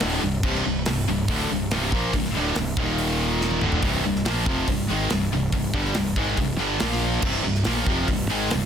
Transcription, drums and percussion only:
0.00 snare, open hi-hat
0.43 kick, crash
0.55 snare
0.86 snare, open hi-hat
1.28 kick, open hi-hat
1.40 snare
1.71 snare, open hi-hat
1.92 kick
2.13 kick, open hi-hat
2.25 snare
2.56 snare, open hi-hat
2.77 kick
2.98 open hi-hat
3.41 snare
3.51 high tom
3.61 mid tom
3.72 floor tom
3.82 kick, open hi-hat
4.16 snare
4.25 snare, open hi-hat
4.46 kick
4.68 kick, open hi-hat
5.10 snare, open hi-hat
5.52 kick, open hi-hat
5.74 kick
5.85 snare
5.94 snare, open hi-hat
6.16 kick
6.37 kick, open hi-hat
6.80 snare, open hi-hat
6.92 snare
7.22 kick, crash
7.55 snare
7.64 snare, open hi-hat
7.86 kick
8.08 kick, open hi-hat
8.51 snare, open hi-hat
8.62 snare

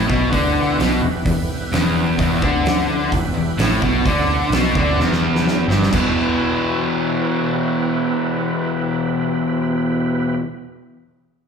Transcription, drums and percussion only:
0.10 kick
0.33 kick, open hi-hat
0.80 snare, open hi-hat
1.26 kick, open hi-hat
1.73 snare, open hi-hat
2.19 kick, open hi-hat
2.42 kick
2.66 snare, open hi-hat
3.12 kick, open hi-hat
3.59 snare, open hi-hat
3.82 kick
4.06 kick, open hi-hat
4.52 snare, open hi-hat
4.75 kick
5.00 snare
5.12 snare
5.36 snare
5.47 snare
5.70 snare
5.83 snare
5.93 kick, crash

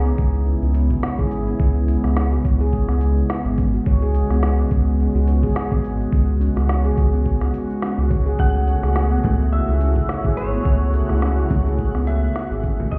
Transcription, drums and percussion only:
0.18 kick, open hi-hat, cabasa
0.34 cabasa
0.46 cabasa
0.62 cabasa
0.75 open hi-hat, cabasa
0.90 kick, cabasa
1.03 snare, cabasa
1.19 kick, cabasa
1.31 open hi-hat, cabasa
1.47 cabasa
1.60 kick, cabasa
1.88 open hi-hat, cabasa
2.04 snare, cabasa
2.17 snare, cabasa
2.45 kick, open hi-hat, cabasa
2.61 cabasa
2.73 kick, cabasa
2.89 snare, cabasa
3.01 open hi-hat, cabasa
3.17 cabasa
3.30 snare, cabasa
3.45 cabasa
3.58 kick, open hi-hat, cabasa
3.74 cabasa
3.86 kick, cabasa
4.15 open hi-hat, cabasa
4.30 snare, cabasa
4.43 snare, cabasa
4.71 kick, open hi-hat, cabasa
4.87 cabasa
5.00 cabasa
5.15 cabasa
5.28 open hi-hat, cabasa
5.43 kick, cabasa
5.56 snare, cabasa
5.72 kick, cabasa
5.84 open hi-hat, cabasa
6.00 cabasa
6.13 kick, cabasa
6.41 open hi-hat, cabasa
6.57 snare, cabasa
6.69 snare, cabasa
6.97 kick, open hi-hat, cabasa
7.13 cabasa
7.26 kick, cabasa
7.41 snare, cabasa
7.54 open hi-hat, cabasa
7.70 cabasa
7.82 snare, cabasa
7.98 cabasa
8.11 kick, open hi-hat, cabasa
8.27 cabasa
8.39 kick, cabasa
8.68 open hi-hat, cabasa
8.83 snare, cabasa
8.96 snare, cabasa
9.24 kick, open hi-hat, frame drum, cabasa
9.39 cabasa
9.52 cabasa
9.68 cabasa
9.81 open hi-hat, cabasa
9.96 kick, cabasa
10.09 snare, cabasa
10.24 kick, cabasa
10.37 open hi-hat, cabasa
10.53 cabasa
10.65 kick, cabasa
10.94 open hi-hat, cabasa
11.09 snare, cabasa
11.22 snare, cabasa
11.50 kick, open hi-hat, frame drum, cabasa
11.66 cabasa
11.79 kick, cabasa
11.95 snare, cabasa
12.07 open hi-hat, cabasa
12.23 cabasa
12.36 snare, cabasa
12.51 cabasa
12.64 kick, open hi-hat, cabasa
12.80 frame drum, cabasa
12.92 kick, cabasa

